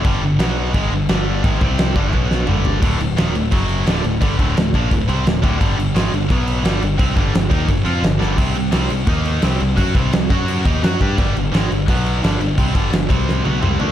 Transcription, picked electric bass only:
X:1
M:4/4
L:1/8
Q:1/4=172
K:none
V:1 name="Picked electric bass" clef=bass
G,,, G,,, B,,,2 ^G,,, =G,,, G,,,2 | ^G,,, C,,2 =G,,, B,,,2 G,,,2 | D,,, D,,, _E,,, D,,, ^F,,,2 D,,, D,,, | G,,, D,,, D,,, _B,,, D,,, C,, D,,, D,,, |
G,,, G,,, ^G,,, =G,,, B,,,2 G,,, G,,, | C,, G,,, G,,, _E,, G,,, F,, G,,, G,,, | C,, C,, C,, C,, _E,,2 C,, C,, | ^F,, C,, C,, F,,2 _E,, F,, G,, |
G,,, G,,, ^G,,, =G,,, B,,,2 G,,, G,,, | C,, G,,, G,,, C,,2 B,,, C,, D,, |]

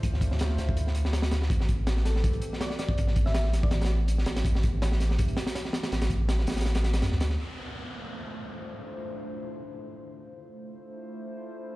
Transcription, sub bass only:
X:1
M:4/4
L:1/16
Q:"Swing 16ths" 1/4=163
K:Dm
V:1 name="Sub bass" clef=bass
D,,6 D,,8 D,,2 | A,,,8 =B,,,2 z6 | A,,,6 A,,,8 A,,,2 | A,,,8 =B,,,2 z6 |
A,,,6 A,,,6 ^F,, D,,3 | z16 | z16 | z16 |]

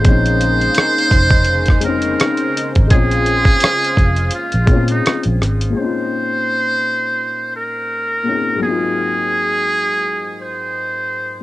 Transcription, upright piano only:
X:1
M:4/4
L:1/8
Q:"Swing 16ths" 1/4=84
K:Bbm
V:1 name="Upright piano"
[A,CDE]3 z2 [A,CDE]2 z | [A,CDF]3 z2 [A,CDF]2 z | [B,,A,CDEF]6- [B,,A,CDEF] [B,,A,CDEA] | [A,,G,B,CEF]8 |]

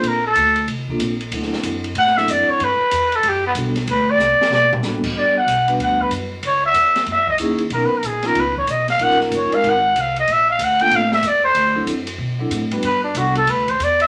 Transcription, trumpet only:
X:1
M:4/4
L:1/8
Q:"Swing" 1/4=188
K:G
V:1 name="Trumpet"
_B A3 z4 | z4 f e d ^c | B3 A G B, z2 | B d3 d G z2 |
d f3 f B z2 | ^c e3 e ^d z2 | (3^A B A _A ^A B ^c ^d =f | _g _B _d =f g2 f _e |
e =f ^f g =f e d c- | c2 z6 | B D F A B c d e |]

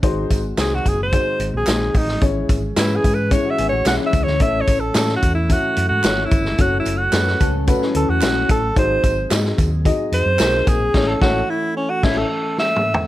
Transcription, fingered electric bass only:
X:1
M:4/4
L:1/16
Q:1/4=110
K:A
V:1 name="Fingered electric bass" clef=bass
G,,,2 G,,,2 ^B,,,2 F,,,3 z G,,, _B,,, B,,,2 A,,,2 | G,,,2 G,,,2 G,,2 G,,3 z G,,, A,,, B,,, z C,, D,, | A,,,2 A,,,2 A,,2 E,,3 z F,, G,, G,,,2 =G,,,2 | F,,,2 F,,,2 F,,2 C,,3 z D,, E,, _B,,,2 A,,,2 |
G,,,2 G,,,2 G,,2 ^D,,3 z =F,, ^F,, B,,,2 _B,,,2 | A,,,2 A,,,2 z4 A,,,2 z6 |]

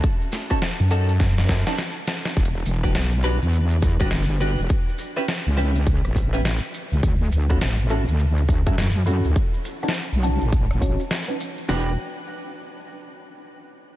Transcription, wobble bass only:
X:1
M:4/4
L:1/16
Q:"Swing 16ths" 1/4=103
K:Edor
V:1 name="Wobble bass" clef=bass
z4 z F,,6 z4 z | E,,,2 E,,,2 B,,,3 E,,4 G,,, G,,,3 E,,, | z4 z C,,4 A,,,4 z2 C,, | D,,2 D,,2 A,,,3 D,,4 F,, F,,3 D,, |
z4 z B,,,2 A,,,4 z4 z | E,,,2 z12 z2 |]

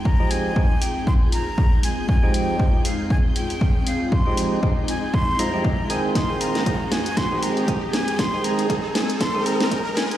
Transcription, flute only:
X:1
M:4/4
L:1/8
Q:"Swing 16ths" 1/4=118
K:Fm
V:1 name="Flute"
b a2 g c' b2 a | a g2 f a g2 f | c' z2 a c' b2 a | c' b2 a c' b2 a |
c' b2 a c' b2 a |]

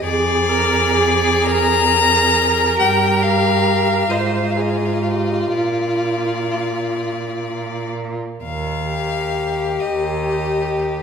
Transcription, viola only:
X:1
M:6/8
L:1/16
Q:3/8=44
K:Bbmix
V:1 name="Viola"
A2 B2 A2 B6- | B6 c2 A2 G2 | F8- F z3 | z6 G6 |]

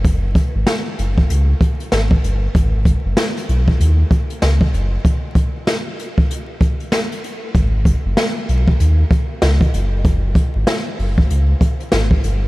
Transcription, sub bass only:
X:1
M:4/4
L:1/16
Q:"Swing 16ths" 1/4=96
K:F#dor
V:1 name="Sub bass" clef=bass
F,,,3 G,,, z2 F,,,2 C,,2 z2 G,,,2 =G,,,2 | G,,,3 F,,, z2 B,,,2 D,,2 z2 C,,2 F,,,2 | z16 | G,,,3 F,,, z2 B,,,2 D,,2 z2 C,,2 F,,,2- |
F,,,3 G,,, z2 F,,,2 C,,2 z2 G,,,2 =G,,,2 |]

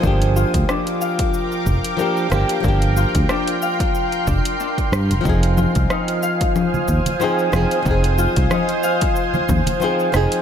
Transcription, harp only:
X:1
M:4/4
L:1/16
Q:"Swing 16ths" 1/4=92
K:Fdor
V:1 name="Harp"
z2 F2 D2 f2 z4 B2 z2 | z2 F2 D2 f2 z2 D2 D2 z2 | z2 F z E2 f2 z4 c2 z2 | z2 F z E2 f2 z4 c2 z2 |]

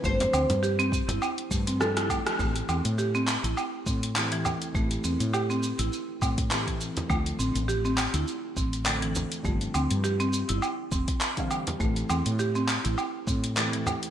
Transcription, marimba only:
X:1
M:4/4
L:1/16
Q:"Swing 16ths" 1/4=102
K:Am
V:1 name="Marimba"
A, z C z G C2 E z2 A, C A E A, z | A, z C z G C2 E z2 C z2 E, z2 | A, z C z G C2 E z2 C z2 E, z2 | A, z C z G C2 E z2 C z2 E, z2 |
A, z C z G C2 E z2 C z2 E, z2 | A, z C z G C2 E z2 C z2 E, z2 |]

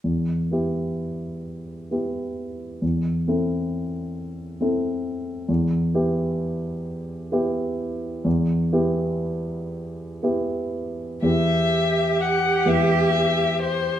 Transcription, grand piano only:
X:1
M:6/8
L:1/8
Q:3/8=43
K:Em
V:1 name="Grand piano"
E,, [B,EG]3 [B,EG]2 | E,, [CEA]3 [CEA]2 | E,, [B,EG]3 [B,EG]2 | E,, [B,EG]3 [B,EG]2 |
[E,,B,EG]3 [E,,B,EG]3 |]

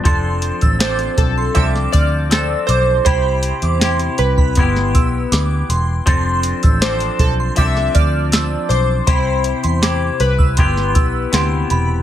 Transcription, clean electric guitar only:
X:1
M:4/4
L:1/8
Q:1/4=80
K:Flyd
V:1 name="Clean electric guitar"
[F,CDA]2 [F,CDA]2 [F,CDA]2 [F,CDA]2 | [C,EG]2 [C,EG]2 [B,EG]4 | [F,CDA]2 [F,CDA]2 [F,CDA]4 | [C,EG]2 [C,EG]2 [B,EG]2 [C,B,EG]2 |]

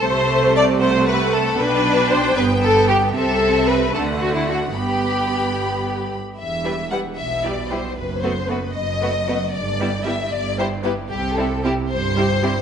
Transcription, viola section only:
X:1
M:6/8
L:1/16
Q:3/8=76
K:G
V:1 name="Viola section"
A,6 A,6 | D6 B,6 | C6 A,6 | B,8- B, z3 |
[K:Em] z2 [G,E]2 [G,E]2 z2 [G,E]2 [G,E]2 | z2 [A,B,]2 [A,B,]2 z2 [A,B,]2 [A,B,]2 | z2 [G,B,]2 [G,B,]2 z2 [G,B,]2 [G,B,]2 | z2 [G,C]2 [G,C]2 z2 [G,C]2 [G,C]2 |]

